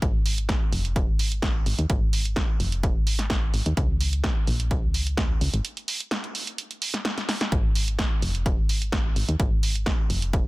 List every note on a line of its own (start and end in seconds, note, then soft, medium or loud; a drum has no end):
0.02 0.55 G#1 medium
0.02 kick loud
0.02 closed hi-hat medium
0.26 open hi-hat loud
0.38 closed hi-hat medium
0.49 kick loud
0.49 snare loud
0.49 closed hi-hat medium
0.72 1.10 F1 loud
0.72 open hi-hat medium
0.85 closed hi-hat soft
0.96 kick loud
0.96 closed hi-hat medium
1.08 1.60 G#1 medium
1.19 open hi-hat loud
1.32 closed hi-hat soft
1.42 kick loud
1.42 snare loud
1.42 closed hi-hat medium
1.66 1.74 G#1 medium
1.66 open hi-hat medium
1.79 1.86 D#2 loud
1.79 closed hi-hat soft
1.90 2.42 G#1 loud
1.90 kick loud
1.90 closed hi-hat medium
2.13 open hi-hat loud
2.25 closed hi-hat medium
2.36 kick loud
2.36 snare loud
2.36 closed hi-hat medium
2.60 2.97 F1 loud
2.60 open hi-hat medium
2.72 closed hi-hat medium
2.83 kick loud
2.83 closed hi-hat medium
2.96 3.48 G#1 medium
3.07 open hi-hat loud
3.19 snare soft
3.19 closed hi-hat medium
3.30 kick loud
3.30 snare loud
3.30 closed hi-hat medium
3.54 3.62 G#1 medium
3.54 open hi-hat medium
3.66 3.73 D#2 loud
3.66 closed hi-hat medium
3.77 4.30 C#2 loud
3.77 kick loud
3.77 closed hi-hat medium
4.01 open hi-hat loud
4.13 closed hi-hat medium
4.24 kick loud
4.24 snare loud
4.24 closed hi-hat medium
4.47 4.85 A#1 loud
4.47 open hi-hat medium
4.60 closed hi-hat medium
4.71 kick loud
4.71 closed hi-hat medium
4.83 5.35 C#2 medium
4.94 open hi-hat medium
5.07 closed hi-hat medium
5.17 kick loud
5.17 snare loud
5.17 closed hi-hat medium
5.41 5.49 C#2 medium
5.41 open hi-hat medium
5.54 5.61 G#1 loud
5.54 closed hi-hat medium
5.65 closed hi-hat medium
5.77 closed hi-hat soft
5.88 open hi-hat medium
6.00 closed hi-hat medium
6.11 snare loud
6.11 closed hi-hat medium
6.24 closed hi-hat soft
6.35 open hi-hat medium
6.47 closed hi-hat medium
6.58 closed hi-hat medium
6.71 closed hi-hat soft
6.82 open hi-hat medium
6.94 snare soft
6.94 closed hi-hat medium
7.05 snare loud
7.05 closed hi-hat medium
7.18 snare soft
7.18 closed hi-hat soft
7.29 snare medium
7.29 open hi-hat medium
7.41 snare medium
7.41 closed hi-hat medium
7.52 8.05 G#1 medium
7.52 kick loud
7.52 closed hi-hat medium
7.75 open hi-hat loud
7.88 closed hi-hat medium
7.99 kick loud
7.99 snare loud
7.99 closed hi-hat medium
8.22 8.60 F1 loud
8.22 open hi-hat medium
8.35 closed hi-hat medium
8.46 kick loud
8.46 closed hi-hat medium
8.58 9.10 G#1 medium
8.69 open hi-hat loud
8.82 closed hi-hat medium
8.92 kick loud
8.92 snare loud
8.92 closed hi-hat medium
9.16 9.24 G#1 medium
9.16 open hi-hat medium
9.29 9.36 D#2 loud
9.29 closed hi-hat medium
9.40 9.92 G#1 medium
9.40 kick loud
9.40 closed hi-hat medium
9.63 open hi-hat loud
9.75 closed hi-hat medium
9.86 kick loud
9.86 snare loud
9.86 closed hi-hat medium
10.10 10.47 F1 loud
10.10 open hi-hat medium
10.22 closed hi-hat medium
10.33 kick loud
10.33 closed hi-hat medium